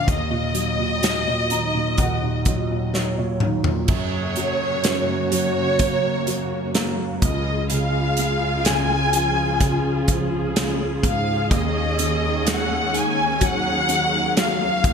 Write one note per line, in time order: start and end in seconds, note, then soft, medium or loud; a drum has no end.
0.00 0.11 A#2 soft
0.00 0.10 D3 soft
0.00 0.10 F3 soft
0.00 0.10 F5 medium
0.07 1.98 D#2 medium
0.07 kick medium
0.07 closed hi-hat medium
0.13 2.92 D#5 medium
0.30 0.77 A#2 soft
0.54 1.00 F#3 soft
0.54 closed hi-hat soft
0.79 1.26 A#2 soft
1.02 2.45 F#3 soft
1.02 snare medium
1.02 closed hi-hat medium
1.27 1.73 A#2 soft
1.50 3.37 D#3 soft
1.50 1.95 A#5 soft
1.50 closed hi-hat medium
1.74 2.22 A#2 soft
1.98 3.85 D#2 soft
1.98 2.43 F#5 medium
1.98 kick medium
1.98 closed hi-hat medium
2.23 2.69 A#2 soft
2.45 2.93 F#3 soft
2.45 2.91 D#5 soft
2.45 kick medium
2.45 closed hi-hat soft
2.70 3.17 A#2 soft
2.94 3.87 F#3 soft
2.94 3.16 C#5 soft
2.94 snare soft
3.18 3.64 A#2 soft
3.18 3.86 C#5 soft
3.40 3.88 D#3 soft
3.40 mid tom medium
3.64 3.88 A#2 soft
3.64 floor tom medium
3.88 7.18 F#2 medium
3.88 7.19 F#2 medium
3.88 7.19 C#3 medium
3.88 7.19 A#3 medium
3.88 7.19 F#4 medium
3.88 5.28 C#5 medium
3.88 kick medium
3.88 crash medium
4.36 5.30 F#3 soft
4.36 closed hi-hat medium
4.84 6.71 C#4 soft
4.84 snare medium
4.84 closed hi-hat medium
5.31 6.25 F#3 soft
5.31 6.71 C#5 medium
5.31 closed hi-hat medium
5.79 6.73 A#3 soft
5.79 kick medium
5.79 closed hi-hat medium
6.27 7.19 F#3 soft
6.27 closed hi-hat medium
6.75 7.21 A#3 soft
6.75 snare medium
6.75 closed hi-hat medium
7.21 11.47 C#2 medium
7.21 11.00 C#2 medium
7.21 11.47 C#3 medium
7.21 11.46 F4 medium
7.21 14.80 G#4 medium
7.21 7.67 D#5 medium
7.21 kick medium
7.21 closed hi-hat medium
7.70 8.64 C#3 soft
7.70 8.61 F5 medium
7.70 closed hi-hat medium
8.17 10.05 G#3 soft
8.17 closed hi-hat medium
8.65 9.59 C#3 soft
8.65 10.08 G#5 medium
8.65 snare medium
8.65 closed hi-hat medium
9.13 10.07 F3 soft
9.13 closed hi-hat medium
9.60 10.54 C#3 soft
9.60 kick medium
9.60 closed hi-hat medium
10.08 11.47 F3 soft
10.08 kick medium
10.08 closed hi-hat medium
10.56 11.48 C#3 soft
10.56 snare medium
10.56 closed hi-hat medium
11.03 11.49 G#2 medium
11.03 11.49 F5 medium
11.03 kick medium
11.03 closed hi-hat medium
11.50 14.81 D#2 medium
11.50 14.80 D#2 medium
11.50 14.93 D#3 medium
11.50 14.80 C#4 medium
11.50 kick medium
11.50 closed hi-hat medium
11.54 12.48 D#5 medium
11.99 12.91 D#3 soft
11.99 closed hi-hat medium
12.46 14.33 G#3 soft
12.46 12.96 F#5 medium
12.46 snare medium
12.46 closed hi-hat medium
12.93 13.87 D#3 soft
12.93 13.43 G#5 medium
12.93 closed hi-hat medium
13.41 14.35 F#3 medium
13.41 14.38 F#5 medium
13.41 kick medium
13.41 closed hi-hat medium
13.88 14.81 D#3 soft
13.88 closed hi-hat medium
14.36 14.83 F#3 soft
14.36 14.93 F5 medium
14.36 snare medium
14.36 closed hi-hat medium
14.83 14.93 D#2 medium
14.83 14.93 A#3 medium
14.83 14.93 F#4 medium
14.83 kick medium
14.83 closed hi-hat medium